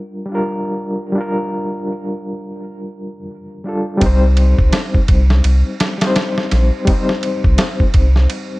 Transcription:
Already playing: reed electric piano G3 D4 F4 A#4
0.26 reed electric piano G3 D4
0.32 reed electric piano F4 A#4
1.12 reed electric piano G3 D4
1.18 reed electric piano F4 A#4
3.64 reed electric piano G3 D4 F4
3.69 reed electric piano A4
3.97 reed electric piano G3 C4, ride
4.02 sub bass C2, reed electric piano D#4, kick
4.06 reed electric piano C5
4.37 ride
4.59 sub bass C2, kick
4.73 snare, ride
4.94 kick
5.08 sub bass C2, kick, ride
5.30 snare
5.44 sub bass C2, ride
5.80 snare, ride
5.98 reed electric piano G3 C4, snare, ride
6.04 reed electric piano D#4 C5
6.16 snare, ride
6.38 snare
6.51 sub bass A#1, snare, ride
6.85 reed electric piano G3 C4, kick, ride
6.90 reed electric piano D#4 C5
7.09 snare
7.23 ride
7.44 sub bass C2, kick
7.58 snare, ride
7.80 kick
7.94 sub bass C2, kick, ride
8.16 snare
8.30 ride

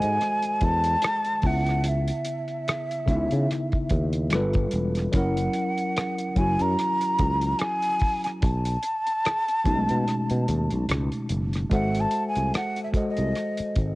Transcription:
Already playing: tine electric piano G#3 F#4 A4 C5 D#5 E5, flute G#5
0.02 fretless electric bass G#2, closed hi-hat
0.21 cross-stick, closed hi-hat
0.42 closed hi-hat
0.61 fretless electric bass E2, flute A5, kick, closed hi-hat
0.84 closed hi-hat
1.02 cross-stick, closed hi-hat
1.25 closed hi-hat
1.42 fretless electric bass C#2, tine electric piano C#3 B3 E4, kick, open hi-hat
1.46 tine electric piano E5, flute F#5
1.67 cross-stick, closed hi-hat
1.84 closed hi-hat
1.88 flute E5
2.08 closed hi-hat
2.25 closed hi-hat
2.48 closed hi-hat
2.68 cross-stick, closed hi-hat
2.91 closed hi-hat
3.06 fretless electric bass C#2, tine electric piano C#3 B3 D#4, kick, closed hi-hat
3.11 tine electric piano E5
3.16 tine electric piano E4
3.31 fretless electric bass C#3, closed hi-hat
3.51 cross-stick, closed hi-hat
3.72 kick, closed hi-hat
3.89 fretless electric bass D#2, kick, closed hi-hat
4.13 closed hi-hat
4.30 fretless electric bass G1, tine electric piano G3 F4 A4, cross-stick, closed hi-hat
4.35 tine electric piano B4
4.53 kick, closed hi-hat
4.71 fretless electric bass E1, closed hi-hat
4.95 cross-stick, closed hi-hat
5.12 fretless electric bass F#1, tine electric piano F#3 C#4 E4, flute F#5, kick, closed hi-hat
5.16 tine electric piano A#4
5.37 closed hi-hat
5.53 closed hi-hat
5.78 closed hi-hat
5.97 cross-stick, closed hi-hat
6.18 closed hi-hat
6.35 fretless electric bass F#1, tine electric piano F#3 C#4 E4, flute G#5, kick, closed hi-hat
6.40 tine electric piano F#4
6.59 fretless electric bass F#2, flute A#5, closed hi-hat
6.79 cross-stick, closed hi-hat
7.01 closed hi-hat
7.19 fretless electric bass C#2, kick, closed hi-hat
7.41 closed hi-hat
7.59 flute G#5, cross-stick, closed hi-hat
7.82 closed hi-hat
7.99 kick, open hi-hat
8.24 flute G#5, cross-stick, closed hi-hat
8.42 fretless electric bass B1, flute A5, kick, closed hi-hat
8.65 closed hi-hat
8.83 closed hi-hat
9.07 closed hi-hat
9.25 cross-stick, closed hi-hat
9.48 closed hi-hat
9.64 fretless electric bass B1, tine electric piano B2 A3 C#4 D#4, kick, closed hi-hat
9.69 tine electric piano F#4
9.75 tine electric piano G#3
9.89 fretless electric bass B2, closed hi-hat
10.08 cross-stick, closed hi-hat
10.30 fretless electric bass B2, closed hi-hat
10.48 fretless electric bass D#2, closed hi-hat
10.70 fretless electric bass B1, closed hi-hat
10.89 fretless electric bass C#2, cross-stick, closed hi-hat
11.12 closed hi-hat
11.29 fretless electric bass F#1, closed hi-hat
11.53 cross-stick, closed hi-hat
11.70 fretless electric bass G#1, tine electric piano G#3 F#4 A4 C5, flute F#5, kick, closed hi-hat
11.74 tine electric piano E5
11.95 closed hi-hat
12.00 flute A5
12.11 closed hi-hat
12.28 flute G#5
12.35 fretless electric bass C2, closed hi-hat
12.54 flute F#5, cross-stick, closed hi-hat
12.76 closed hi-hat
12.84 flute E5
12.93 tine electric piano G#3 F#4 A4 C5, muted fretless electric bass stroke, kick, closed hi-hat
12.97 tine electric piano D#5
13.10 flute D#5
13.17 fretless electric bass C2, closed hi-hat
13.35 cross-stick, closed hi-hat
13.57 muted fretless electric bass stroke, closed hi-hat
13.76 fretless electric bass G#1, kick, closed hi-hat

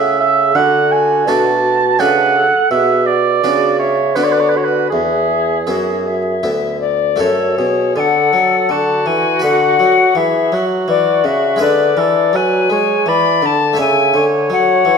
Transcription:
Already playing: harpsichord C#3 A3 E4, bassoon C#3, recorder G#4, oboe E5
0.20 oboe E5
0.55 bassoon D3, harpsichord D3, recorder F#4, oboe F#5
0.92 oboe G#5
1.27 bassoon B2, harpsichord B2 A3 D4 F#4, oboe A5
1.99 harpsichord C#3 A3 D4 F#4, bassoon C#3, recorder B4, oboe F#5
2.36 recorder A4
2.71 bassoon B2, harpsichord B2, recorder G#4 A4, oboe E5
3.06 oboe D5
3.43 bassoon C#3, harpsichord C#3 B3 D4 F#4, recorder F#4
3.79 oboe C#5, recorder E5
4.15 harpsichord D3 B3 D4 F#4, bassoon D3, oboe B4, recorder D5
4.23 oboe C#5
4.32 oboe B4
4.40 oboe C#5
4.49 oboe B4
4.55 recorder F#4, oboe C#5
4.64 oboe B4
4.90 bassoon E2, harpsichord E2, oboe G#4, recorder E5
5.67 bassoon F#2, harpsichord F#2 B3 E4, recorder F#4
6.06 recorder E5
6.43 harpsichord D2 B3 E4, bassoon D2
6.80 recorder D5
7.16 bassoon F#2, harpsichord A3 F#4 A4, oboe A4, recorder C#5
7.20 harpsichord F#2
7.58 bassoon B2, harpsichord B2, oboe G#4
7.96 harpsichord D3, bassoon D3, oboe A4, recorder F#5 G#5
8.33 harpsichord F#3, bassoon F#3
8.69 harpsichord D3, bassoon D3, oboe F#4, recorder A5
9.06 harpsichord E3, bassoon E3, recorder G#5
9.39 harpsichord D3 F#4 B4
9.44 bassoon D3, recorder F#5
9.79 harpsichord F#3, bassoon F#3
10.15 harpsichord E3, bassoon E3, oboe G#4, recorder E5
10.52 harpsichord F#3, bassoon F#3, oboe F#4
10.88 harpsichord E3, bassoon E3, recorder D5
11.24 harpsichord C#3, bassoon C#3, recorder E5
11.56 harpsichord G#3 E4 B4
11.61 bassoon D3, harpsichord D3, oboe B4, recorder D5
11.97 harpsichord E3, bassoon E3, oboe A4
12.33 harpsichord F#3, bassoon F#3, oboe B4, recorder G#5
12.70 harpsichord G#3, bassoon G#3, oboe C#5
13.06 harpsichord E3, bassoon E3, oboe D5, recorder B5
13.42 harpsichord D3, bassoon D3, recorder A5
13.73 harpsichord A3 E4 C#5
13.78 harpsichord C#3, bassoon C#3, oboe E5, recorder G#5
14.14 harpsichord D3, bassoon D3, oboe C#5
14.50 harpsichord F#3, bassoon F#3, recorder F#5
14.85 harpsichord E3, bassoon E3

